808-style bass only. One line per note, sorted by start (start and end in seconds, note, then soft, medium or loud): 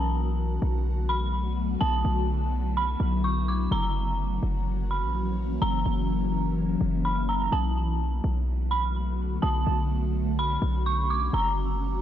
0.00 0.59 B1 loud
0.62 1.77 B1 loud
1.81 2.04 B1 loud
2.05 2.96 B1 loud
3.00 3.69 B1 loud
3.71 4.40 F#1 loud
4.43 5.04 F#1 loud
5.02 5.59 A#1 medium
5.62 5.85 F#1 loud
5.86 6.77 F#1 loud
6.81 7.49 F#1 loud
7.52 8.21 B1 loud
8.24 9.39 B1 loud
9.43 9.66 B1 loud
9.67 10.58 B1 loud
10.62 11.30 B1 loud
11.33 12.02 F#1 loud